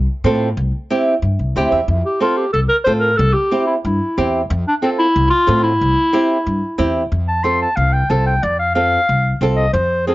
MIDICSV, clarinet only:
0, 0, Header, 1, 2, 480
1, 0, Start_track
1, 0, Key_signature, -1, "major"
1, 0, Tempo, 327332
1, 848, Time_signature, 4, 2, 24, 8
1, 14880, End_track
2, 0, Start_track
2, 0, Title_t, "Clarinet"
2, 0, Program_c, 0, 71
2, 3014, Note_on_c, 0, 67, 88
2, 3233, Note_off_c, 0, 67, 0
2, 3249, Note_on_c, 0, 65, 96
2, 3475, Note_on_c, 0, 67, 86
2, 3497, Note_off_c, 0, 65, 0
2, 3702, Note_off_c, 0, 67, 0
2, 3711, Note_on_c, 0, 69, 99
2, 3822, Note_off_c, 0, 69, 0
2, 3940, Note_on_c, 0, 70, 102
2, 4054, Note_off_c, 0, 70, 0
2, 4167, Note_on_c, 0, 72, 109
2, 4283, Note_off_c, 0, 72, 0
2, 4396, Note_on_c, 0, 70, 101
2, 4642, Note_on_c, 0, 69, 108
2, 4664, Note_off_c, 0, 70, 0
2, 4888, Note_on_c, 0, 67, 100
2, 4910, Note_off_c, 0, 69, 0
2, 5373, Note_off_c, 0, 67, 0
2, 5382, Note_on_c, 0, 64, 77
2, 5495, Note_off_c, 0, 64, 0
2, 5626, Note_on_c, 0, 64, 74
2, 6304, Note_off_c, 0, 64, 0
2, 6858, Note_on_c, 0, 62, 94
2, 6963, Note_off_c, 0, 62, 0
2, 7079, Note_on_c, 0, 60, 93
2, 7188, Note_off_c, 0, 60, 0
2, 7313, Note_on_c, 0, 64, 106
2, 7764, Note_off_c, 0, 64, 0
2, 7773, Note_on_c, 0, 65, 123
2, 8234, Note_off_c, 0, 65, 0
2, 8262, Note_on_c, 0, 64, 115
2, 10134, Note_off_c, 0, 64, 0
2, 10675, Note_on_c, 0, 81, 83
2, 10904, Note_on_c, 0, 84, 92
2, 10926, Note_off_c, 0, 81, 0
2, 11147, Note_off_c, 0, 84, 0
2, 11173, Note_on_c, 0, 81, 85
2, 11382, Note_on_c, 0, 77, 87
2, 11404, Note_off_c, 0, 81, 0
2, 11625, Note_on_c, 0, 79, 85
2, 11647, Note_off_c, 0, 77, 0
2, 11876, Note_on_c, 0, 81, 90
2, 11898, Note_off_c, 0, 79, 0
2, 12109, Note_off_c, 0, 81, 0
2, 12117, Note_on_c, 0, 79, 88
2, 12364, Note_on_c, 0, 74, 89
2, 12386, Note_off_c, 0, 79, 0
2, 12592, Note_off_c, 0, 74, 0
2, 12600, Note_on_c, 0, 77, 82
2, 12819, Note_off_c, 0, 77, 0
2, 12828, Note_on_c, 0, 77, 99
2, 13768, Note_off_c, 0, 77, 0
2, 14019, Note_on_c, 0, 75, 91
2, 14265, Note_off_c, 0, 75, 0
2, 14272, Note_on_c, 0, 72, 89
2, 14745, Note_off_c, 0, 72, 0
2, 14765, Note_on_c, 0, 68, 89
2, 14880, Note_off_c, 0, 68, 0
2, 14880, End_track
0, 0, End_of_file